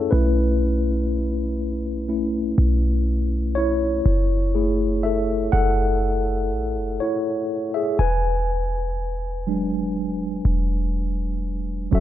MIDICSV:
0, 0, Header, 1, 3, 480
1, 0, Start_track
1, 0, Tempo, 983607
1, 59, Time_signature, 4, 2, 24, 8
1, 5856, End_track
2, 0, Start_track
2, 0, Title_t, "Tine electric piano"
2, 0, Program_c, 0, 4
2, 0, Control_c, 0, 64, 127
2, 0, Note_on_c, 0, 61, 62
2, 0, Note_on_c, 0, 64, 73
2, 0, Note_on_c, 0, 68, 69
2, 0, Note_on_c, 0, 69, 79
2, 0, Note_on_c, 0, 73, 86
2, 0, Note_on_c, 0, 76, 91
2, 52, Note_on_c, 0, 71, 81
2, 56, Note_on_c, 0, 57, 54
2, 60, Note_off_c, 0, 61, 0
2, 60, Note_on_c, 0, 61, 51
2, 63, Note_off_c, 0, 64, 0
2, 63, Note_on_c, 0, 64, 65
2, 64, Control_c, 0, 64, 0
2, 66, Note_off_c, 0, 68, 0
2, 68, Note_off_c, 0, 73, 0
2, 68, Note_off_c, 0, 76, 0
2, 69, Note_off_c, 0, 69, 0
2, 145, Control_c, 0, 64, 127
2, 376, Note_off_c, 0, 57, 0
2, 378, Note_off_c, 0, 61, 0
2, 996, Note_off_c, 0, 71, 0
2, 1001, Note_off_c, 0, 64, 0
2, 1018, Note_on_c, 0, 57, 49
2, 1021, Note_on_c, 0, 61, 44
2, 1022, Note_on_c, 0, 64, 52
2, 1239, Note_off_c, 0, 57, 0
2, 1240, Note_off_c, 0, 61, 0
2, 1241, Note_off_c, 0, 64, 0
2, 1733, Note_on_c, 0, 73, 98
2, 1745, Note_on_c, 0, 64, 79
2, 1986, Control_c, 0, 64, 0
2, 2078, Control_c, 0, 64, 127
2, 2196, Note_off_c, 0, 73, 0
2, 2202, Note_off_c, 0, 64, 0
2, 2219, Note_on_c, 0, 68, 55
2, 2223, Note_on_c, 0, 57, 49
2, 2224, Note_on_c, 0, 64, 61
2, 2456, Note_on_c, 0, 76, 81
2, 2465, Note_on_c, 0, 69, 65
2, 2685, Note_off_c, 0, 69, 0
2, 2695, Note_on_c, 0, 78, 95
2, 2704, Note_off_c, 0, 76, 0
2, 2705, Note_on_c, 0, 69, 75
2, 2919, Note_off_c, 0, 68, 0
2, 2921, Note_off_c, 0, 57, 0
2, 2922, Note_off_c, 0, 64, 0
2, 3397, Note_off_c, 0, 78, 0
2, 3402, Note_off_c, 0, 69, 0
2, 3417, Note_on_c, 0, 73, 82
2, 3425, Note_on_c, 0, 64, 64
2, 3762, Note_off_c, 0, 64, 0
2, 3779, Note_on_c, 0, 76, 81
2, 3786, Note_on_c, 0, 68, 66
2, 3789, Note_off_c, 0, 73, 0
2, 3894, Note_off_c, 0, 68, 0
2, 3900, Note_on_c, 0, 80, 98
2, 3902, Note_off_c, 0, 76, 0
2, 3906, Control_c, 0, 64, 0
2, 3907, Note_on_c, 0, 71, 78
2, 3983, Control_c, 0, 64, 127
2, 4621, Note_on_c, 0, 54, 56
2, 4624, Note_on_c, 0, 56, 52
2, 4628, Note_on_c, 0, 62, 59
2, 4939, Note_off_c, 0, 54, 0
2, 4941, Note_off_c, 0, 56, 0
2, 4943, Note_off_c, 0, 62, 0
2, 5319, Note_off_c, 0, 80, 0
2, 5323, Note_off_c, 0, 71, 0
2, 5812, Note_on_c, 0, 54, 78
2, 5817, Note_on_c, 0, 61, 77
2, 5823, Note_on_c, 0, 66, 72
2, 5825, Control_c, 0, 64, 0
2, 5826, Note_on_c, 0, 69, 70
2, 5831, Note_on_c, 0, 76, 88
2, 5856, Note_off_c, 0, 54, 0
2, 5856, Note_off_c, 0, 61, 0
2, 5856, Note_off_c, 0, 66, 0
2, 5856, Note_off_c, 0, 69, 0
2, 5856, Note_off_c, 0, 76, 0
2, 5856, End_track
3, 0, Start_track
3, 0, Title_t, "808-style bass"
3, 0, Program_c, 1, 38
3, 61, Note_on_c, 1, 35, 111
3, 1240, Note_off_c, 1, 35, 0
3, 1259, Note_on_c, 1, 35, 92
3, 1959, Note_off_c, 1, 35, 0
3, 1980, Note_on_c, 1, 30, 110
3, 2679, Note_off_c, 1, 30, 0
3, 2699, Note_on_c, 1, 30, 99
3, 3180, Note_on_c, 1, 33, 91
3, 3187, Note_off_c, 1, 30, 0
3, 3301, Note_on_c, 1, 30, 97
3, 3308, Note_off_c, 1, 33, 0
3, 3414, Note_off_c, 1, 30, 0
3, 3900, Note_on_c, 1, 28, 104
3, 5079, Note_off_c, 1, 28, 0
3, 5100, Note_on_c, 1, 28, 93
3, 5800, Note_off_c, 1, 28, 0
3, 5820, Note_on_c, 1, 30, 112
3, 5856, Note_off_c, 1, 30, 0
3, 5856, End_track
0, 0, End_of_file